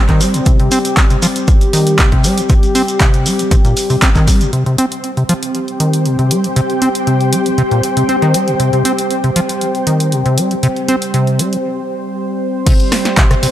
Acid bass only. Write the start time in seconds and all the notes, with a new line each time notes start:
0.09 D#3
0.21 G3
0.34 C3
0.46 C3
0.60 C3
0.72 C4
1.10 C3
1.23 F3
1.73 D#3
1.99 C3
2.12 C3
2.24 G3
2.38 F3
2.50 C3
2.75 C4
3.00 C3
3.26 G3
3.39 F3
3.51 C3
3.65 A#2
3.90 C3
4.02 C4
4.16 D#3
4.28 G3
4.41 C3
4.53 C3
4.66 C3
4.78 C4
5.17 C3
5.29 F3
5.80 D#3
6.06 C3
6.19 C3
6.31 G3
6.44 F3
6.56 C3
6.82 C4
7.07 C3
7.33 G3
7.46 F3
7.58 C3
7.71 A#2
7.97 C3
8.09 C4
8.22 D#3
8.34 G3
8.48 C3
8.60 C3
8.73 C3
8.85 C4
9.24 C3
9.36 F3
9.87 D#3
10.12 C3
10.26 C3
10.38 G3
10.51 F3
10.63 C3
10.89 C4
11.14 C3
11.39 G3
11.53 F3
12.67 C3
13.17 C3
13.31 C3
13.43 C3